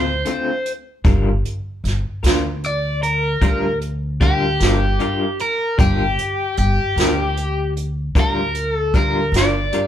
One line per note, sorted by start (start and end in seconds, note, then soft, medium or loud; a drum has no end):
0.00 0.22 D2 medium
0.00 0.11 A3 soft
0.00 0.10 C4 soft
0.00 0.71 C5 medium
0.25 0.49 D3 soft
0.25 0.49 A3 soft
0.25 0.50 C4 medium
0.25 0.50 F4 medium
0.25 closed hi-hat medium
0.66 closed hi-hat medium
1.04 1.41 G1 medium
1.04 1.28 G3 medium
1.04 1.28 D4 medium
1.04 1.29 F4 medium
1.04 1.29 A#4 medium
1.04 kick loud
1.04 closed hi-hat medium
1.45 closed hi-hat medium
1.84 2.02 G1 medium
1.84 snare soft
1.84 closed hi-hat medium
2.23 3.38 D2 medium
2.23 2.48 D4 soft
2.23 2.47 F4 medium
2.23 2.47 A#4 medium
2.23 snare loud
2.23 closed hi-hat medium
2.64 3.02 D5 medium
2.64 closed hi-hat medium
3.03 3.77 A#4 medium
3.03 closed hi-hat medium
3.41 4.56 D2 medium
3.41 3.65 G3 medium
3.41 3.66 D4 medium
3.41 3.66 F4 medium
3.41 3.66 A#4 medium
3.41 kick medium
3.41 closed hi-hat medium
3.81 closed hi-hat soft
4.20 4.44 G3 soft
4.20 4.45 D4 medium
4.20 4.45 F4 medium
4.20 5.41 G4 medium
4.20 4.45 A#4 medium
4.20 kick medium
4.20 closed hi-hat medium
4.60 4.97 G1 medium
4.60 4.85 D4 soft
4.60 4.84 F4 soft
4.60 4.83 A#4 soft
4.60 snare loud
4.60 closed hi-hat medium
4.99 5.23 G3 soft
4.99 5.24 D4 medium
4.99 5.24 F4 medium
4.99 5.24 A#4 medium
4.99 closed hi-hat soft
5.39 5.80 A#4 medium
5.39 closed hi-hat medium
5.78 6.15 G1 medium
5.78 6.02 G3 medium
5.78 6.02 D4 medium
5.78 6.02 F4 medium
5.78 6.57 G4 medium
5.78 6.03 A#4 medium
5.78 kick medium
5.78 closed hi-hat medium
6.18 closed hi-hat medium
6.57 6.76 G1 medium
6.57 7.73 G4 medium
6.57 closed hi-hat medium
6.96 8.11 D2 medium
6.96 7.22 D4 soft
6.96 7.22 F4 soft
6.96 7.21 A#4 medium
6.96 snare loud
6.96 closed hi-hat medium
7.37 closed hi-hat medium
7.77 closed hi-hat medium
8.15 9.30 D2 medium
8.15 8.39 G3 medium
8.15 8.39 D4 medium
8.15 8.40 F4 medium
8.15 8.40 A#4 medium
8.15 kick medium
8.15 closed hi-hat medium
8.21 8.75 A#4 medium
8.55 closed hi-hat medium
8.75 8.95 A4 medium
8.94 9.18 G3 medium
8.94 9.19 D4 medium
8.94 9.19 F4 medium
8.94 9.36 A#4 medium
8.94 9.20 A#4 medium
8.94 kick medium
8.94 closed hi-hat medium
9.32 9.69 G1 medium
9.32 9.58 D4 soft
9.32 9.58 F4 soft
9.32 9.57 A#4 medium
9.32 closed hi-hat medium
9.36 9.87 D5 medium
9.36 snare medium
9.72 9.87 G3 soft
9.72 9.87 D4 medium
9.72 9.87 F4 medium
9.72 9.87 A#4 medium
9.72 closed hi-hat medium